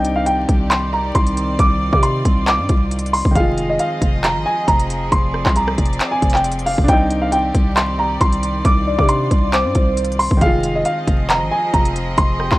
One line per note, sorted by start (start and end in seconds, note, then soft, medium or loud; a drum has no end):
0.00 0.46 C2 loud
0.00 3.32 D#3 medium
0.00 3.31 C4 medium
0.00 3.32 C4 medium
0.00 3.29 D4 medium
0.00 3.34 D#4 medium
0.00 1.57 G4 medium
0.00 3.32 D5 medium
0.00 0.14 G5 loud
0.05 closed hi-hat medium
0.16 0.24 F5 medium
0.26 0.68 G5 medium
0.26 closed hi-hat loud
0.49 1.12 C2 loud
0.49 kick medium
0.49 closed hi-hat medium
0.70 0.88 C6 medium
0.70 clap loud
0.70 closed hi-hat medium
0.93 1.11 A#5 medium
1.15 1.57 C2 loud
1.15 1.56 C6 medium
1.15 kick loud
1.15 closed hi-hat medium
1.27 closed hi-hat medium
1.37 closed hi-hat medium
1.59 1.91 C2 loud
1.59 3.34 F4 medium
1.59 1.91 D6 loud
1.59 kick loud
1.59 closed hi-hat medium
1.92 2.24 C3 loud
1.92 2.01 D6 medium
1.92 kick loud
2.03 2.44 C6 medium
2.03 closed hi-hat loud
2.25 2.60 C2 loud
2.25 kick loud
2.25 closed hi-hat medium
2.47 3.09 D6 medium
2.47 clap loud
2.47 closed hi-hat medium
2.59 2.69 G2 loud
2.69 3.23 C2 loud
2.69 kick loud
2.69 closed hi-hat medium
2.91 closed hi-hat medium
2.99 closed hi-hat medium
3.06 closed hi-hat medium
3.13 3.31 C6 medium
3.13 open hi-hat medium
3.25 3.35 C2 loud
3.25 kick medium
3.31 6.82 D#3 medium
3.35 3.78 F1 loud
3.35 6.85 F3 medium
3.35 6.84 G#3 medium
3.35 10.37 C4 medium
3.35 6.85 G#4 medium
3.35 5.10 D#5 medium
3.35 3.67 F5 loud
3.35 kick loud
3.35 closed hi-hat medium
3.40 6.87 F4 medium
3.58 closed hi-hat medium
3.70 3.78 D#5 medium
3.79 4.21 F5 medium
3.79 closed hi-hat loud
4.02 4.37 F1 loud
4.02 kick medium
4.02 closed hi-hat medium
4.24 4.42 A#5 medium
4.24 clap loud
4.24 closed hi-hat medium
4.35 4.45 G#1 loud
4.46 4.64 G#5 medium
4.68 5.10 F1 loud
4.68 5.09 A#5 medium
4.68 kick loud
4.68 closed hi-hat medium
4.79 closed hi-hat medium
4.90 closed hi-hat medium
5.12 5.44 F1 loud
5.12 6.87 D5 medium
5.12 5.44 C6 medium
5.12 kick loud
5.12 closed hi-hat medium
5.34 cross-stick medium
5.46 5.77 C2 loud
5.46 5.54 C6 medium
5.46 kick loud
5.46 clap medium
5.56 6.09 A#5 medium
5.56 closed hi-hat loud
5.68 cross-stick loud
5.78 5.99 F1 loud
5.78 kick loud
5.78 closed hi-hat medium
5.86 closed hi-hat medium
5.93 closed hi-hat soft
6.00 clap loud
6.00 closed hi-hat medium
6.11 6.30 G#5 medium
6.22 6.76 F1 loud
6.22 kick loud
6.22 closed hi-hat medium
6.30 closed hi-hat medium
6.34 6.64 G5 medium
6.34 clap medium
6.34 closed hi-hat soft
6.44 closed hi-hat medium
6.52 closed hi-hat medium
6.59 closed hi-hat medium
6.66 6.84 F5 medium
6.66 open hi-hat medium
6.78 6.88 F1 loud
6.78 kick loud
6.84 10.35 D4 medium
6.88 7.52 C2 loud
6.88 10.38 D#3 medium
6.88 10.37 C4 medium
6.88 8.63 G4 medium
6.88 10.38 D5 medium
6.88 7.20 G5 loud
6.88 kick loud
6.88 closed hi-hat medium
6.93 10.39 D#4 medium
7.11 closed hi-hat medium
7.22 7.30 F5 medium
7.32 7.74 G5 medium
7.32 closed hi-hat medium
7.55 8.18 C2 loud
7.55 kick loud
7.55 closed hi-hat medium
7.76 7.94 C6 medium
7.76 clap loud
7.76 closed hi-hat medium
7.99 8.17 A#5 medium
8.21 8.63 C2 loud
8.21 8.62 C6 medium
8.21 kick loud
8.21 closed hi-hat medium
8.32 closed hi-hat medium
8.43 closed hi-hat medium
8.65 8.97 C2 loud
8.65 10.40 F4 medium
8.65 8.97 D6 loud
8.65 kick loud
8.65 closed hi-hat medium
8.87 9.49 D5 loud
8.98 9.30 C3 loud
8.98 9.07 D6 medium
8.98 kick loud
9.09 9.50 C6 medium
9.09 closed hi-hat loud
9.31 9.66 C2 loud
9.31 kick loud
9.31 closed hi-hat medium
9.53 10.37 C5 medium
9.53 10.15 D6 medium
9.53 clap loud
9.53 closed hi-hat medium
9.65 9.75 G2 loud
9.75 10.29 C2 loud
9.75 kick loud
9.75 closed hi-hat medium
9.97 closed hi-hat medium
10.04 closed hi-hat medium
10.12 closed hi-hat medium
10.19 10.37 C6 medium
10.19 open hi-hat medium
10.31 10.41 C2 loud
10.31 kick loud
10.37 12.59 D#3 medium
10.41 10.84 F1 loud
10.41 12.59 F3 medium
10.41 12.59 G#3 medium
10.41 12.59 C4 medium
10.41 12.59 G#4 medium
10.41 12.59 D#5 medium
10.41 10.73 F5 loud
10.41 kick loud
10.41 closed hi-hat medium
10.46 12.59 F4 medium
10.63 closed hi-hat medium
10.75 10.84 D#5 medium
10.85 11.27 F5 medium
10.85 closed hi-hat loud
11.07 11.43 F1 loud
11.07 kick loud
11.07 closed hi-hat medium
11.30 11.48 A#5 medium
11.30 clap loud
11.30 closed hi-hat medium
11.41 11.51 G#1 loud
11.51 11.70 G#5 medium
11.73 12.16 F1 loud
11.73 12.15 A#5 medium
11.73 kick loud
11.73 closed hi-hat medium
11.85 closed hi-hat medium
11.96 closed hi-hat medium
12.18 12.50 F1 loud
12.18 12.50 C6 loud
12.18 kick loud
12.18 closed hi-hat medium
12.40 12.59 G5 medium
12.40 cross-stick medium
12.52 12.59 C2 loud
12.52 12.59 C6 medium
12.52 kick loud
12.52 clap medium